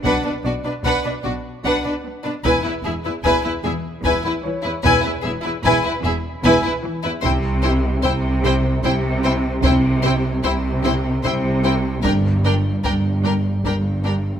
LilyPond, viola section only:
\new Staff \with { instrumentName = "Viola section" } { \time 3/4 \tempo 4 = 75 d'16 d'16 d'16 d'16 d'16 d'16 d'16 r16 d'16 d'16 r16 d'16 | e'16 e'16 e'16 e'16 e'16 e'16 e'16 r16 e'16 e'16 r16 e'16 | e'16 e'16 e'16 e'16 e'16 e'16 e'16 r16 e'16 e'16 r16 e'16 | e'8 e'8 e'8 e'8 e'8 e'8 |
e'8 e'8 e'8 e'8 e'8 e'8 | d'8 d'8 d'8 d'8 d'8 d'8 | }